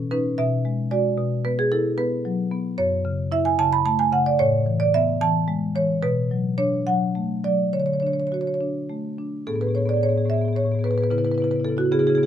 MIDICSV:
0, 0, Header, 1, 2, 480
1, 0, Start_track
1, 0, Key_signature, 3, "major"
1, 0, Tempo, 538117
1, 1050, Time_signature, 6, 3, 24, 8
1, 5375, Tempo, 574163
1, 8255, Tempo, 542005
1, 10728, End_track
2, 0, Start_track
2, 0, Title_t, "Marimba"
2, 0, Program_c, 0, 12
2, 0, Note_on_c, 0, 47, 57
2, 0, Note_on_c, 0, 61, 41
2, 90, Note_off_c, 0, 61, 0
2, 100, Note_on_c, 0, 71, 75
2, 101, Note_on_c, 0, 61, 45
2, 102, Note_on_c, 0, 63, 43
2, 313, Note_off_c, 0, 47, 0
2, 314, Note_off_c, 0, 61, 0
2, 315, Note_off_c, 0, 63, 0
2, 327, Note_off_c, 0, 71, 0
2, 339, Note_on_c, 0, 76, 85
2, 342, Note_on_c, 0, 47, 64
2, 580, Note_on_c, 0, 56, 46
2, 795, Note_off_c, 0, 76, 0
2, 803, Note_off_c, 0, 56, 0
2, 814, Note_on_c, 0, 56, 46
2, 814, Note_on_c, 0, 74, 76
2, 818, Note_on_c, 0, 66, 45
2, 1027, Note_off_c, 0, 56, 0
2, 1030, Note_off_c, 0, 66, 0
2, 1033, Note_off_c, 0, 47, 0
2, 1052, Note_on_c, 0, 47, 53
2, 1270, Note_off_c, 0, 74, 0
2, 1291, Note_on_c, 0, 59, 44
2, 1291, Note_on_c, 0, 71, 75
2, 1408, Note_off_c, 0, 71, 0
2, 1417, Note_on_c, 0, 68, 80
2, 1530, Note_off_c, 0, 68, 0
2, 1532, Note_on_c, 0, 64, 55
2, 1532, Note_on_c, 0, 69, 75
2, 1669, Note_off_c, 0, 59, 0
2, 1758, Note_off_c, 0, 69, 0
2, 1763, Note_on_c, 0, 71, 80
2, 1764, Note_on_c, 0, 59, 51
2, 1912, Note_off_c, 0, 64, 0
2, 2008, Note_on_c, 0, 54, 49
2, 2149, Note_off_c, 0, 59, 0
2, 2225, Note_off_c, 0, 71, 0
2, 2243, Note_on_c, 0, 59, 50
2, 2389, Note_off_c, 0, 54, 0
2, 2447, Note_off_c, 0, 47, 0
2, 2479, Note_on_c, 0, 73, 89
2, 2480, Note_on_c, 0, 42, 58
2, 2482, Note_off_c, 0, 59, 0
2, 2720, Note_on_c, 0, 49, 50
2, 2941, Note_off_c, 0, 73, 0
2, 2958, Note_on_c, 0, 64, 56
2, 2962, Note_on_c, 0, 76, 88
2, 3079, Note_on_c, 0, 80, 88
2, 3082, Note_off_c, 0, 76, 0
2, 3105, Note_off_c, 0, 49, 0
2, 3201, Note_off_c, 0, 80, 0
2, 3201, Note_on_c, 0, 81, 102
2, 3202, Note_on_c, 0, 49, 56
2, 3323, Note_off_c, 0, 81, 0
2, 3323, Note_on_c, 0, 83, 91
2, 3345, Note_off_c, 0, 64, 0
2, 3436, Note_on_c, 0, 57, 53
2, 3439, Note_on_c, 0, 81, 92
2, 3443, Note_off_c, 0, 83, 0
2, 3559, Note_on_c, 0, 80, 92
2, 3562, Note_off_c, 0, 81, 0
2, 3587, Note_off_c, 0, 49, 0
2, 3679, Note_on_c, 0, 49, 51
2, 3681, Note_off_c, 0, 80, 0
2, 3681, Note_on_c, 0, 78, 83
2, 3801, Note_off_c, 0, 78, 0
2, 3803, Note_on_c, 0, 74, 77
2, 3822, Note_off_c, 0, 57, 0
2, 3884, Note_off_c, 0, 42, 0
2, 3918, Note_on_c, 0, 45, 62
2, 3918, Note_on_c, 0, 73, 93
2, 3919, Note_off_c, 0, 49, 0
2, 3921, Note_off_c, 0, 74, 0
2, 4158, Note_on_c, 0, 52, 46
2, 4264, Note_off_c, 0, 73, 0
2, 4280, Note_on_c, 0, 74, 83
2, 4401, Note_off_c, 0, 74, 0
2, 4409, Note_on_c, 0, 76, 100
2, 4410, Note_on_c, 0, 59, 55
2, 4546, Note_off_c, 0, 52, 0
2, 4638, Note_off_c, 0, 76, 0
2, 4647, Note_on_c, 0, 52, 53
2, 4650, Note_on_c, 0, 81, 104
2, 4793, Note_off_c, 0, 59, 0
2, 4886, Note_on_c, 0, 56, 60
2, 5033, Note_off_c, 0, 52, 0
2, 5112, Note_off_c, 0, 81, 0
2, 5134, Note_on_c, 0, 52, 48
2, 5135, Note_on_c, 0, 73, 83
2, 5275, Note_off_c, 0, 56, 0
2, 5336, Note_off_c, 0, 45, 0
2, 5367, Note_off_c, 0, 73, 0
2, 5375, Note_on_c, 0, 71, 83
2, 5376, Note_off_c, 0, 52, 0
2, 5377, Note_on_c, 0, 47, 63
2, 5614, Note_on_c, 0, 54, 42
2, 5822, Note_off_c, 0, 71, 0
2, 5837, Note_on_c, 0, 62, 50
2, 5837, Note_on_c, 0, 73, 81
2, 5985, Note_off_c, 0, 54, 0
2, 6065, Note_off_c, 0, 73, 0
2, 6077, Note_on_c, 0, 54, 46
2, 6078, Note_on_c, 0, 78, 79
2, 6217, Note_off_c, 0, 62, 0
2, 6317, Note_on_c, 0, 57, 48
2, 6459, Note_off_c, 0, 54, 0
2, 6538, Note_off_c, 0, 78, 0
2, 6560, Note_on_c, 0, 54, 43
2, 6560, Note_on_c, 0, 74, 76
2, 6703, Note_off_c, 0, 57, 0
2, 6769, Note_off_c, 0, 47, 0
2, 6793, Note_off_c, 0, 74, 0
2, 6801, Note_on_c, 0, 73, 61
2, 6802, Note_off_c, 0, 54, 0
2, 6803, Note_on_c, 0, 50, 46
2, 6854, Note_off_c, 0, 73, 0
2, 6854, Note_on_c, 0, 73, 51
2, 6909, Note_off_c, 0, 73, 0
2, 6909, Note_on_c, 0, 73, 51
2, 6970, Note_off_c, 0, 73, 0
2, 6970, Note_on_c, 0, 73, 47
2, 7025, Note_off_c, 0, 73, 0
2, 7025, Note_on_c, 0, 73, 54
2, 7047, Note_on_c, 0, 62, 34
2, 7081, Note_off_c, 0, 73, 0
2, 7081, Note_on_c, 0, 73, 51
2, 7137, Note_off_c, 0, 73, 0
2, 7137, Note_on_c, 0, 73, 49
2, 7190, Note_off_c, 0, 73, 0
2, 7190, Note_on_c, 0, 73, 46
2, 7250, Note_off_c, 0, 73, 0
2, 7250, Note_on_c, 0, 73, 55
2, 7292, Note_on_c, 0, 66, 39
2, 7309, Note_off_c, 0, 73, 0
2, 7309, Note_on_c, 0, 73, 46
2, 7368, Note_off_c, 0, 73, 0
2, 7368, Note_on_c, 0, 73, 52
2, 7420, Note_off_c, 0, 73, 0
2, 7420, Note_on_c, 0, 73, 50
2, 7436, Note_off_c, 0, 62, 0
2, 7478, Note_off_c, 0, 73, 0
2, 7478, Note_on_c, 0, 73, 51
2, 7503, Note_off_c, 0, 73, 0
2, 7531, Note_on_c, 0, 62, 40
2, 7677, Note_off_c, 0, 66, 0
2, 7774, Note_on_c, 0, 57, 37
2, 7918, Note_off_c, 0, 62, 0
2, 8016, Note_on_c, 0, 62, 32
2, 8160, Note_off_c, 0, 57, 0
2, 8221, Note_off_c, 0, 50, 0
2, 8252, Note_on_c, 0, 68, 34
2, 8253, Note_off_c, 0, 62, 0
2, 8254, Note_on_c, 0, 59, 39
2, 8254, Note_on_c, 0, 69, 74
2, 8255, Note_on_c, 0, 45, 44
2, 8310, Note_off_c, 0, 68, 0
2, 8310, Note_on_c, 0, 68, 28
2, 8331, Note_off_c, 0, 59, 0
2, 8331, Note_on_c, 0, 59, 33
2, 8339, Note_off_c, 0, 45, 0
2, 8339, Note_on_c, 0, 45, 34
2, 8376, Note_off_c, 0, 69, 0
2, 8379, Note_on_c, 0, 71, 64
2, 8380, Note_off_c, 0, 68, 0
2, 8380, Note_on_c, 0, 68, 30
2, 8393, Note_off_c, 0, 59, 0
2, 8393, Note_on_c, 0, 59, 35
2, 8436, Note_off_c, 0, 45, 0
2, 8436, Note_on_c, 0, 45, 36
2, 8444, Note_off_c, 0, 68, 0
2, 8444, Note_on_c, 0, 68, 28
2, 8462, Note_off_c, 0, 59, 0
2, 8462, Note_on_c, 0, 59, 31
2, 8500, Note_off_c, 0, 71, 0
2, 8501, Note_on_c, 0, 73, 58
2, 8507, Note_off_c, 0, 68, 0
2, 8507, Note_on_c, 0, 68, 29
2, 8516, Note_off_c, 0, 45, 0
2, 8516, Note_on_c, 0, 45, 37
2, 8526, Note_off_c, 0, 59, 0
2, 8526, Note_on_c, 0, 59, 33
2, 8566, Note_off_c, 0, 68, 0
2, 8566, Note_on_c, 0, 68, 26
2, 8597, Note_off_c, 0, 59, 0
2, 8597, Note_on_c, 0, 59, 33
2, 8605, Note_off_c, 0, 45, 0
2, 8605, Note_on_c, 0, 45, 38
2, 8621, Note_off_c, 0, 73, 0
2, 8626, Note_off_c, 0, 68, 0
2, 8626, Note_on_c, 0, 68, 29
2, 8627, Note_on_c, 0, 74, 67
2, 8667, Note_off_c, 0, 59, 0
2, 8667, Note_on_c, 0, 59, 31
2, 8690, Note_off_c, 0, 68, 0
2, 8690, Note_on_c, 0, 68, 29
2, 8696, Note_off_c, 0, 45, 0
2, 8696, Note_on_c, 0, 45, 36
2, 8734, Note_off_c, 0, 59, 0
2, 8734, Note_on_c, 0, 59, 30
2, 8744, Note_off_c, 0, 74, 0
2, 8750, Note_on_c, 0, 73, 68
2, 8755, Note_off_c, 0, 68, 0
2, 8755, Note_on_c, 0, 68, 30
2, 8779, Note_off_c, 0, 45, 0
2, 8779, Note_on_c, 0, 45, 36
2, 8803, Note_off_c, 0, 59, 0
2, 8803, Note_on_c, 0, 59, 35
2, 8815, Note_off_c, 0, 68, 0
2, 8815, Note_on_c, 0, 68, 27
2, 8864, Note_off_c, 0, 45, 0
2, 8864, Note_on_c, 0, 45, 36
2, 8879, Note_off_c, 0, 59, 0
2, 8879, Note_on_c, 0, 59, 33
2, 8881, Note_off_c, 0, 68, 0
2, 8881, Note_on_c, 0, 68, 31
2, 8942, Note_off_c, 0, 68, 0
2, 8942, Note_on_c, 0, 68, 27
2, 8947, Note_off_c, 0, 45, 0
2, 8947, Note_on_c, 0, 45, 39
2, 8955, Note_off_c, 0, 59, 0
2, 8955, Note_on_c, 0, 59, 33
2, 8976, Note_off_c, 0, 73, 0
2, 8987, Note_on_c, 0, 76, 71
2, 9005, Note_off_c, 0, 68, 0
2, 9005, Note_on_c, 0, 68, 30
2, 9024, Note_off_c, 0, 45, 0
2, 9024, Note_on_c, 0, 45, 35
2, 9028, Note_off_c, 0, 59, 0
2, 9028, Note_on_c, 0, 59, 33
2, 9061, Note_off_c, 0, 68, 0
2, 9061, Note_on_c, 0, 68, 29
2, 9093, Note_off_c, 0, 59, 0
2, 9093, Note_on_c, 0, 59, 34
2, 9123, Note_off_c, 0, 45, 0
2, 9123, Note_on_c, 0, 45, 37
2, 9125, Note_off_c, 0, 68, 0
2, 9125, Note_on_c, 0, 68, 29
2, 9152, Note_off_c, 0, 59, 0
2, 9152, Note_on_c, 0, 59, 32
2, 9192, Note_off_c, 0, 68, 0
2, 9192, Note_on_c, 0, 68, 29
2, 9214, Note_off_c, 0, 45, 0
2, 9214, Note_off_c, 0, 76, 0
2, 9214, Note_on_c, 0, 45, 34
2, 9222, Note_off_c, 0, 59, 0
2, 9222, Note_on_c, 0, 59, 34
2, 9223, Note_on_c, 0, 73, 72
2, 9254, Note_off_c, 0, 68, 0
2, 9254, Note_on_c, 0, 68, 29
2, 9288, Note_off_c, 0, 59, 0
2, 9288, Note_on_c, 0, 59, 31
2, 9296, Note_off_c, 0, 45, 0
2, 9296, Note_on_c, 0, 45, 38
2, 9308, Note_off_c, 0, 68, 0
2, 9308, Note_on_c, 0, 68, 27
2, 9359, Note_off_c, 0, 59, 0
2, 9359, Note_on_c, 0, 59, 35
2, 9375, Note_off_c, 0, 68, 0
2, 9375, Note_on_c, 0, 68, 31
2, 9386, Note_off_c, 0, 45, 0
2, 9386, Note_on_c, 0, 45, 33
2, 9423, Note_off_c, 0, 59, 0
2, 9423, Note_on_c, 0, 59, 32
2, 9440, Note_off_c, 0, 68, 0
2, 9440, Note_on_c, 0, 68, 28
2, 9453, Note_off_c, 0, 73, 0
2, 9468, Note_on_c, 0, 71, 66
2, 9484, Note_off_c, 0, 45, 0
2, 9484, Note_on_c, 0, 45, 39
2, 9486, Note_off_c, 0, 59, 0
2, 9486, Note_on_c, 0, 59, 35
2, 9497, Note_off_c, 0, 68, 0
2, 9497, Note_on_c, 0, 68, 29
2, 9528, Note_off_c, 0, 71, 0
2, 9528, Note_on_c, 0, 71, 54
2, 9550, Note_off_c, 0, 68, 0
2, 9550, Note_on_c, 0, 68, 26
2, 9562, Note_off_c, 0, 59, 0
2, 9562, Note_on_c, 0, 59, 32
2, 9576, Note_off_c, 0, 45, 0
2, 9576, Note_on_c, 0, 45, 33
2, 9590, Note_off_c, 0, 71, 0
2, 9590, Note_on_c, 0, 71, 58
2, 9612, Note_off_c, 0, 68, 0
2, 9612, Note_on_c, 0, 68, 31
2, 9631, Note_off_c, 0, 59, 0
2, 9631, Note_on_c, 0, 59, 34
2, 9640, Note_off_c, 0, 71, 0
2, 9640, Note_on_c, 0, 71, 53
2, 9665, Note_off_c, 0, 68, 0
2, 9666, Note_off_c, 0, 45, 0
2, 9666, Note_off_c, 0, 59, 0
2, 9701, Note_on_c, 0, 49, 41
2, 9701, Note_on_c, 0, 59, 35
2, 9704, Note_on_c, 0, 64, 40
2, 9709, Note_off_c, 0, 71, 0
2, 9709, Note_on_c, 0, 71, 60
2, 9770, Note_off_c, 0, 59, 0
2, 9770, Note_off_c, 0, 71, 0
2, 9770, Note_on_c, 0, 59, 27
2, 9770, Note_on_c, 0, 71, 52
2, 9774, Note_off_c, 0, 49, 0
2, 9774, Note_on_c, 0, 49, 31
2, 9777, Note_off_c, 0, 64, 0
2, 9777, Note_on_c, 0, 64, 34
2, 9828, Note_off_c, 0, 71, 0
2, 9828, Note_on_c, 0, 71, 57
2, 9833, Note_off_c, 0, 59, 0
2, 9833, Note_on_c, 0, 59, 29
2, 9843, Note_off_c, 0, 49, 0
2, 9843, Note_on_c, 0, 49, 37
2, 9845, Note_off_c, 0, 64, 0
2, 9845, Note_on_c, 0, 64, 33
2, 9888, Note_off_c, 0, 71, 0
2, 9888, Note_on_c, 0, 71, 54
2, 9894, Note_off_c, 0, 59, 0
2, 9894, Note_on_c, 0, 59, 30
2, 9915, Note_off_c, 0, 64, 0
2, 9915, Note_on_c, 0, 64, 31
2, 9916, Note_off_c, 0, 49, 0
2, 9916, Note_on_c, 0, 49, 33
2, 9945, Note_off_c, 0, 71, 0
2, 9945, Note_on_c, 0, 71, 56
2, 9964, Note_off_c, 0, 59, 0
2, 9964, Note_on_c, 0, 59, 31
2, 9982, Note_off_c, 0, 64, 0
2, 9982, Note_on_c, 0, 64, 37
2, 9993, Note_off_c, 0, 49, 0
2, 9993, Note_on_c, 0, 49, 34
2, 9999, Note_off_c, 0, 71, 0
2, 9999, Note_on_c, 0, 71, 55
2, 10032, Note_off_c, 0, 59, 0
2, 10032, Note_on_c, 0, 59, 27
2, 10059, Note_off_c, 0, 64, 0
2, 10059, Note_on_c, 0, 64, 31
2, 10063, Note_off_c, 0, 71, 0
2, 10063, Note_on_c, 0, 71, 54
2, 10068, Note_off_c, 0, 49, 0
2, 10068, Note_on_c, 0, 49, 32
2, 10103, Note_off_c, 0, 59, 0
2, 10103, Note_on_c, 0, 59, 29
2, 10138, Note_off_c, 0, 64, 0
2, 10138, Note_on_c, 0, 64, 35
2, 10151, Note_off_c, 0, 49, 0
2, 10151, Note_on_c, 0, 49, 35
2, 10153, Note_off_c, 0, 71, 0
2, 10179, Note_off_c, 0, 59, 0
2, 10179, Note_on_c, 0, 59, 30
2, 10181, Note_on_c, 0, 69, 68
2, 10217, Note_off_c, 0, 64, 0
2, 10217, Note_on_c, 0, 64, 31
2, 10227, Note_off_c, 0, 49, 0
2, 10227, Note_on_c, 0, 49, 33
2, 10247, Note_off_c, 0, 59, 0
2, 10247, Note_on_c, 0, 59, 30
2, 10290, Note_off_c, 0, 64, 0
2, 10290, Note_on_c, 0, 64, 37
2, 10298, Note_off_c, 0, 69, 0
2, 10300, Note_on_c, 0, 66, 67
2, 10305, Note_off_c, 0, 49, 0
2, 10305, Note_on_c, 0, 49, 34
2, 10318, Note_off_c, 0, 59, 0
2, 10318, Note_on_c, 0, 59, 29
2, 10365, Note_off_c, 0, 64, 0
2, 10365, Note_on_c, 0, 64, 31
2, 10394, Note_off_c, 0, 49, 0
2, 10394, Note_off_c, 0, 59, 0
2, 10395, Note_off_c, 0, 64, 0
2, 10417, Note_off_c, 0, 66, 0
2, 10421, Note_on_c, 0, 64, 42
2, 10422, Note_on_c, 0, 49, 53
2, 10423, Note_on_c, 0, 59, 46
2, 10424, Note_on_c, 0, 68, 72
2, 10488, Note_off_c, 0, 68, 0
2, 10488, Note_on_c, 0, 68, 59
2, 10489, Note_off_c, 0, 64, 0
2, 10489, Note_on_c, 0, 64, 33
2, 10496, Note_off_c, 0, 59, 0
2, 10496, Note_on_c, 0, 59, 38
2, 10499, Note_off_c, 0, 49, 0
2, 10499, Note_on_c, 0, 49, 41
2, 10556, Note_off_c, 0, 68, 0
2, 10556, Note_on_c, 0, 68, 64
2, 10564, Note_off_c, 0, 64, 0
2, 10564, Note_on_c, 0, 64, 36
2, 10576, Note_off_c, 0, 59, 0
2, 10576, Note_on_c, 0, 59, 37
2, 10580, Note_off_c, 0, 49, 0
2, 10580, Note_on_c, 0, 49, 45
2, 10626, Note_off_c, 0, 68, 0
2, 10626, Note_on_c, 0, 68, 55
2, 10634, Note_off_c, 0, 64, 0
2, 10634, Note_on_c, 0, 64, 31
2, 10652, Note_off_c, 0, 49, 0
2, 10652, Note_on_c, 0, 49, 40
2, 10655, Note_off_c, 0, 59, 0
2, 10655, Note_on_c, 0, 59, 37
2, 10699, Note_off_c, 0, 68, 0
2, 10699, Note_on_c, 0, 68, 62
2, 10728, Note_off_c, 0, 49, 0
2, 10728, Note_off_c, 0, 59, 0
2, 10728, Note_off_c, 0, 64, 0
2, 10728, Note_off_c, 0, 68, 0
2, 10728, End_track
0, 0, End_of_file